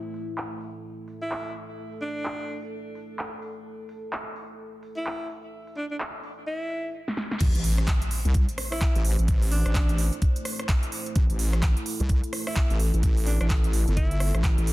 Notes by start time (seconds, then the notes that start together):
Already playing: A3 E4 A4
0.14 open hi-hat
0.38 clap
0.61 open hi-hat
1.08 open hi-hat
1.22 E4
1.32 clap
1.55 open hi-hat
1.92 open hi-hat
2.01 D4, open hi-hat
2.25 clap
2.48 open hi-hat
2.95 open hi-hat
3.19 clap
3.42 open hi-hat
3.89 open hi-hat
4.13 clap
4.36 open hi-hat
4.83 open hi-hat
4.97 E4
5.07 clap
5.30 open hi-hat
5.67 open hi-hat
5.77 D4, open hi-hat
5.91 D4
6.00 clap
6.23 open hi-hat
6.47 E4
6.70 open hi-hat
7.08 snare
7.17 snare
7.31 snare
7.41 A1 A3 E4 C5, kick, closed hi-hat, crash, impact
7.55 A1, closed hi-hat
7.64 open hi-hat
7.78 cross-stick, closed hi-hat
7.87 kick, clap, closed hi-hat
8.02 closed hi-hat
8.11 open hi-hat
8.25 C2, closed hi-hat
8.34 kick, closed hi-hat
8.49 closed hi-hat
8.58 cross-stick, open hi-hat
8.72 E4, cross-stick, open hi-hat
8.81 kick, clap, closed hi-hat
8.95 A1, closed hi-hat
9.05 open hi-hat
9.19 A1, closed hi-hat
9.28 kick, closed hi-hat
9.42 open hi-hat
9.51 D4, open hi-hat
9.66 A1, cross-stick, closed hi-hat
9.75 kick, clap, closed hi-hat
9.89 closed hi-hat
9.98 open hi-hat
10.13 closed hi-hat
10.22 kick, closed hi-hat
10.36 closed hi-hat
10.45 cross-stick, open hi-hat
10.59 cross-stick, closed hi-hat
10.69 kick, clap, closed hi-hat
10.83 closed hi-hat
10.92 open hi-hat
11.06 closed hi-hat
11.16 A1 A4, kick, closed hi-hat
11.30 A1, closed hi-hat
11.39 open hi-hat
11.53 cross-stick, closed hi-hat
11.62 kick, clap, closed hi-hat
11.77 closed hi-hat
11.86 open hi-hat
12.00 C2, closed hi-hat
12.09 kick, closed hi-hat
12.24 closed hi-hat
12.33 cross-stick, open hi-hat
12.47 E4, cross-stick, open hi-hat
12.56 kick, clap, closed hi-hat
12.70 A1, closed hi-hat
12.80 open hi-hat
12.94 A1, closed hi-hat
13.03 kick, closed hi-hat
13.17 open hi-hat
13.26 D4, open hi-hat
13.41 A1 D4, cross-stick, closed hi-hat
13.50 kick, clap, closed hi-hat
13.64 closed hi-hat
13.73 open hi-hat
13.88 G1, closed hi-hat
13.97 E4, kick, closed hi-hat
14.11 closed hi-hat
14.20 cross-stick, open hi-hat
14.34 A1, cross-stick, closed hi-hat
14.44 kick, clap, closed hi-hat
14.58 A1, closed hi-hat
14.67 open hi-hat